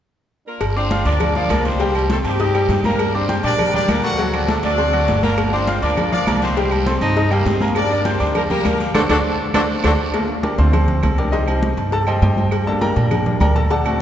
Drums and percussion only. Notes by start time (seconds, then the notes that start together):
0.61 cowbell, high conga, low agogo, long guiro, claves
0.76 high conga
0.90 cowbell, high conga, low timbale, low agogo, short guiro
1.05 cowbell, high conga, low agogo, short guiro
1.20 cowbell, high conga, low conga, low agogo, long guiro, claves
1.35 cowbell, high conga
1.50 cowbell, high conga, low timbale, low agogo, short guiro, claves
1.65 cowbell, high conga, short guiro
1.80 cowbell, high conga, low agogo, long guiro
1.95 high conga, low agogo, claves
2.10 cowbell, high conga, low timbale, short guiro
2.25 cowbell, low agogo, short guiro
2.39 cowbell, high conga, low agogo, long guiro
2.54 high conga, low agogo, claves
2.69 cowbell, high conga, low timbale, short guiro
2.84 high conga, low agogo, short guiro
2.99 cowbell, high conga, low agogo, long guiro, claves
3.14 high conga
3.29 cowbell, high conga, low timbale, low agogo, short guiro
3.43 cowbell, high conga, low agogo, short guiro
3.58 cowbell, high conga, low conga, low agogo, long guiro, claves
3.73 cowbell, high conga, low conga
3.88 cowbell, high conga, low timbale, low agogo, short guiro, claves
4.03 cowbell, high conga, short guiro
4.18 cowbell, high conga, low agogo, long guiro
4.33 high conga, low agogo, claves
4.48 cowbell, high conga, low timbale, short guiro
4.63 cowbell, low agogo, short guiro
4.78 cowbell, high conga, low agogo, long guiro
4.93 high conga, low agogo, claves
5.08 cowbell, high conga, low timbale, short guiro
5.23 high conga, low agogo, short guiro
5.38 cowbell, high conga, low agogo, long guiro, claves
5.53 high conga
5.67 cowbell, high conga, low timbale, low agogo, short guiro
5.83 cowbell, high conga, low agogo, short guiro
5.97 cowbell, high conga, low conga, low agogo, long guiro, claves
6.12 cowbell, high conga, low conga
6.27 cowbell, high conga, low timbale, low agogo, short guiro, claves
6.42 cowbell, high conga, short guiro
6.57 cowbell, high conga, low agogo, long guiro
6.71 high conga, low agogo, claves
6.87 cowbell, high conga, low timbale, short guiro
7.02 cowbell, low agogo, short guiro
7.16 cowbell, high conga, low agogo, long guiro
7.31 high conga, low agogo, claves
7.46 cowbell, high conga, low timbale, short guiro
7.60 high conga, low agogo, short guiro
7.75 cowbell, high conga, low agogo, long guiro, claves
7.91 high conga
8.05 cowbell, high conga, low timbale, low agogo, short guiro
8.20 cowbell, high conga, low agogo, short guiro
8.35 cowbell, high conga, low conga, low agogo, long guiro, claves
8.50 cowbell, high conga, low conga
8.65 cowbell, high conga, low timbale, low agogo, short guiro, claves
8.80 cowbell, high conga, short guiro
8.95 cowbell, high conga, high timbale, long guiro, claves
9.09 cowbell, high conga, high timbale, long guiro, claves
9.54 cowbell, high conga, high timbale, long guiro, claves
9.84 cowbell, high conga, high timbale, claves
10.14 cowbell, high conga, low agogo, claves
10.28 high conga
10.43 cowbell, high conga, low timbale, low agogo
10.58 cowbell, high conga, low agogo
10.73 cowbell, high conga, low conga, low agogo, claves
10.88 cowbell, high conga, low conga
11.03 cowbell, high conga, low timbale, low agogo, claves
11.18 cowbell, high conga
11.33 cowbell, high conga, low agogo
11.48 high conga, low agogo, claves
11.63 cowbell, high conga, low timbale
11.78 cowbell, low agogo
11.92 cowbell, high conga, low agogo
12.07 high conga, low agogo, claves
12.22 cowbell, high conga, low timbale
12.37 high conga, low agogo
12.51 cowbell, high conga, low agogo, claves
12.67 high conga
12.82 cowbell, high conga, low timbale, low agogo
12.96 cowbell, high conga, low agogo
13.11 cowbell, high conga, low conga, low agogo, claves
13.26 cowbell, high conga, low conga
13.41 cowbell, high conga, low timbale, low agogo, claves
13.56 cowbell, high conga
13.70 cowbell, high conga, low agogo
13.85 high conga, low agogo, claves